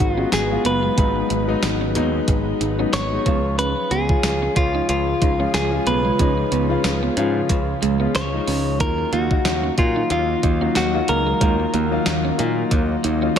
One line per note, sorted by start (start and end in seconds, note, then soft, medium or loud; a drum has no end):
0.00 0.23 G#1 loud
0.00 0.17 F#3 medium
0.00 3.22 F#3 medium
0.00 0.18 G#3 medium
0.00 3.22 G#3 medium
0.00 0.18 B3 medium
0.00 3.26 C#4 medium
0.00 0.13 D#4 medium
0.00 0.98 D#4 medium
0.00 3.22 D#4 medium
0.00 0.11 F#4 medium
0.00 3.22 B4 medium
0.00 kick medium
0.00 closed hi-hat medium
0.11 0.29 F4 medium
0.17 0.38 F#3 medium
0.17 0.38 G#3 medium
0.17 0.38 B3 medium
0.17 0.29 C#4 medium
0.17 0.38 F#4 medium
0.32 0.56 G#1 medium
0.32 0.63 G#4 medium
0.32 muted clean electric guitar stroke soft
0.32 snare loud
0.32 closed hi-hat medium
0.32 tambourine medium
0.50 0.82 F#3 medium
0.50 0.82 G#3 medium
0.50 0.82 B3 medium
0.50 0.83 F4 medium
0.65 0.88 F#1 medium
0.65 0.78 B3 medium
0.65 2.57 B4 medium
0.65 closed hi-hat medium
0.83 0.94 G#3 medium
0.97 1.21 G#1 loud
0.97 1.29 F#3 medium
0.97 1.29 G#3 medium
0.97 1.11 G#3 medium
0.97 1.30 B3 medium
0.97 1.30 D#4 medium
0.97 kick loud
0.97 closed hi-hat medium
1.16 muted clean electric guitar stroke soft
1.30 1.54 G#1 medium
1.30 1.44 B3 medium
1.30 closed hi-hat medium
1.47 1.79 F#3 medium
1.47 1.80 G#3 medium
1.47 1.80 B3 medium
1.47 1.80 D#4 medium
1.63 1.97 G#1 medium
1.63 muted clean electric guitar stroke soft
1.63 snare loud
1.63 closed hi-hat medium
1.63 tambourine medium
1.81 1.92 C#4 medium
1.95 2.19 D#2 medium
1.95 2.49 F#3 medium
1.95 2.50 G#3 medium
1.95 2.50 B3 medium
1.95 2.09 B3 medium
1.95 2.50 D#4 loud
1.95 closed hi-hat medium
2.28 2.51 G#1 loud
2.28 muted clean electric guitar stroke soft
2.28 kick medium
2.28 closed hi-hat medium
2.61 2.84 G#1 medium
2.61 2.74 D#4 medium
2.61 closed hi-hat medium
2.78 2.98 F#3 medium
2.78 2.99 G#3 medium
2.78 2.99 B3 medium
2.78 2.90 C#4 medium
2.78 2.99 D#4 medium
2.93 3.17 G#1 loud
2.93 3.58 C#5 loud
2.93 snare loud
2.93 closed hi-hat medium
2.93 tambourine medium
3.11 3.26 F#3 medium
3.11 3.24 G#3 medium
3.11 3.26 B3 medium
3.11 3.26 D#4 medium
3.26 3.73 C#2 medium
3.26 8.76 C#3 medium
3.26 3.91 F3 medium
3.26 3.91 G#3 medium
3.26 3.40 B3 medium
3.26 8.76 C#4 medium
3.26 3.91 C#4 medium
3.26 8.76 F4 medium
3.26 3.92 F4 medium
3.26 8.76 G#4 medium
3.26 kick loud
3.26 closed hi-hat medium
3.59 3.72 C#4 medium
3.59 3.92 B4 loud
3.59 closed hi-hat medium
3.77 muted clean electric guitar stroke soft
3.91 4.14 C#2 medium
3.91 4.05 B3 medium
3.91 4.56 G#4 loud
3.91 closed hi-hat medium
4.08 4.40 F3 medium
4.08 4.41 G#3 medium
4.08 4.41 C#4 medium
4.08 4.41 F4 medium
4.08 kick medium
4.23 4.47 C#2 loud
4.23 snare loud
4.23 closed hi-hat medium
4.23 tambourine medium
4.42 4.53 C#4 medium
4.55 4.80 C#2 loud
4.55 5.10 F3 medium
4.55 5.10 G#3 medium
4.55 5.10 C#4 medium
4.55 5.11 F4 medium
4.55 4.88 F4 medium
4.55 muted clean electric guitar stroke soft
4.55 kick loud
4.55 closed hi-hat medium
4.75 4.85 D#4 medium
4.89 5.13 C#2 loud
4.89 5.54 F4 medium
4.89 muted clean electric guitar stroke soft
4.89 closed hi-hat medium
5.22 5.45 C#2 medium
5.22 5.35 D#4 medium
5.22 kick loud
5.22 closed hi-hat medium
5.39 5.59 F3 medium
5.39 5.59 G#3 medium
5.39 5.60 C#4 medium
5.39 5.51 C#4 medium
5.39 5.60 F4 medium
5.54 5.78 C#2 medium
5.54 5.88 G#4 medium
5.54 snare loud
5.54 closed hi-hat medium
5.54 tambourine medium
5.71 6.03 F3 medium
5.71 6.04 G#3 medium
5.71 6.04 C#4 medium
5.71 6.04 F4 medium
5.87 6.10 B1 medium
5.87 6.00 B3 medium
5.87 7.79 B4 medium
5.87 closed hi-hat medium
6.05 6.16 G#3 medium
6.19 6.43 C#2 loud
6.19 6.51 F3 medium
6.19 6.51 G#3 medium
6.19 6.33 C#4 medium
6.19 6.51 C#4 medium
6.19 6.52 D#4 medium
6.19 kick loud
6.19 closed hi-hat medium
6.38 muted clean electric guitar stroke soft
6.52 6.75 C#2 loud
6.52 6.66 B3 medium
6.52 closed hi-hat medium
6.69 7.01 F3 medium
6.69 7.01 G#3 medium
6.69 7.02 C#4 medium
6.69 7.02 F4 medium
6.84 7.08 C#2 loud
6.84 muted clean electric guitar stroke soft
6.84 snare loud
6.84 closed hi-hat medium
6.84 tambourine medium
7.03 7.14 B3 medium
7.17 7.41 G#2 medium
7.17 7.71 F3 medium
7.17 7.71 G#3 medium
7.17 7.30 C#4 medium
7.17 7.72 C#4 medium
7.17 7.72 F4 medium
7.17 closed hi-hat medium
7.49 7.73 C#2 loud
7.49 muted clean electric guitar stroke soft
7.49 kick medium
7.49 closed hi-hat medium
7.82 8.06 C#2 medium
7.82 7.96 G#3 medium
7.82 closed hi-hat medium
8.00 8.20 F3 medium
8.00 8.20 G#3 medium
8.00 8.11 B3 medium
8.00 8.21 C#4 medium
8.00 8.21 F4 medium
8.15 8.39 C#2 medium
8.15 8.80 C#5 loud
8.15 snare loud
8.15 closed hi-hat medium
8.15 tambourine medium
8.32 8.64 F3 medium
8.32 8.65 G#3 medium
8.32 8.65 C#4 medium
8.32 8.65 D#4 medium
8.47 8.80 C#2 medium
8.47 8.61 C#4 medium
8.47 open hi-hat medium
8.79 9.04 D#2 loud
8.79 13.39 D#3 medium
8.79 9.12 F#3 medium
8.79 13.39 F#3 medium
8.79 9.12 A#3 medium
8.79 9.12 D#4 medium
8.79 8.94 D#4 medium
8.79 13.39 D#4 medium
8.79 9.12 F4 medium
8.79 9.11 A#4 loud
8.79 13.39 F5 medium
8.79 kick loud
8.79 closed hi-hat medium
8.98 muted clean electric guitar stroke soft
9.13 9.36 D#2 loud
9.13 9.26 A#3 medium
9.13 9.74 F#4 medium
9.13 closed hi-hat medium
9.30 9.62 F#3 medium
9.30 9.62 A#3 medium
9.30 9.63 D#4 medium
9.30 9.63 F#4 medium
9.30 kick medium
9.45 9.69 D#2 loud
9.45 snare loud
9.45 closed hi-hat medium
9.45 tambourine medium
9.63 9.74 C#4 medium
9.77 10.01 A#2 medium
9.77 10.32 F#3 medium
9.77 10.32 A#3 medium
9.77 10.32 D#4 medium
9.77 10.33 F4 medium
9.77 10.10 F4 medium
9.77 muted clean electric guitar stroke soft
9.77 kick loud
9.77 closed hi-hat medium
9.96 10.07 D#4 medium
10.10 10.34 D#2 loud
10.10 10.76 F4 medium
10.10 muted clean electric guitar stroke soft
10.10 closed hi-hat medium
10.43 10.67 D#2 medium
10.43 10.57 D#4 medium
10.43 kick medium
10.43 closed hi-hat medium
10.61 10.81 F#3 medium
10.61 10.81 A#3 medium
10.61 10.72 C#4 medium
10.61 10.81 D#4 medium
10.61 10.81 F#4 medium
10.75 11.00 D#2 medium
10.75 11.10 F#4 medium
10.75 muted clean electric guitar stroke soft
10.75 snare loud
10.75 closed hi-hat medium
10.75 tambourine medium
10.93 11.25 F#3 medium
10.93 11.25 A#3 medium
10.93 11.26 D#4 medium
10.93 11.26 F4 medium
11.08 11.32 C#2 loud
11.08 11.22 A#3 medium
11.08 13.00 A#4 medium
11.08 closed hi-hat medium
11.27 11.38 G#3 medium
11.40 11.65 D#2 loud
11.40 11.73 F#3 medium
11.40 11.55 G#3 medium
11.40 11.73 A#3 medium
11.40 11.73 D#4 medium
11.40 11.73 F4 medium
11.40 kick loud
11.40 closed hi-hat medium
11.60 muted clean electric guitar stroke soft
11.74 11.97 D#2 medium
11.74 11.87 A#3 medium
11.74 closed hi-hat medium
11.91 12.23 F#3 medium
11.91 12.23 A#3 medium
11.91 12.23 D#4 medium
11.91 12.24 F4 medium
12.06 12.30 D#2 loud
12.06 muted clean electric guitar stroke soft
12.06 snare loud
12.06 closed hi-hat medium
12.06 tambourine medium
12.25 12.36 C#4 medium
12.38 12.63 A#2 medium
12.38 12.93 F#3 medium
12.38 12.93 A#3 medium
12.38 12.53 A#3 medium
12.38 12.93 D#4 medium
12.38 12.93 F4 loud
12.38 closed hi-hat medium
12.71 12.95 D#2 loud
12.71 muted clean electric guitar stroke soft
12.71 kick medium
12.71 closed hi-hat medium
13.04 13.28 D#2 medium
13.04 13.18 D#4 medium
13.04 closed hi-hat medium
13.21 13.39 F#3 medium
13.21 13.39 A#3 medium
13.21 13.33 C#4 medium
13.21 13.39 D#4 medium
13.21 13.39 F4 medium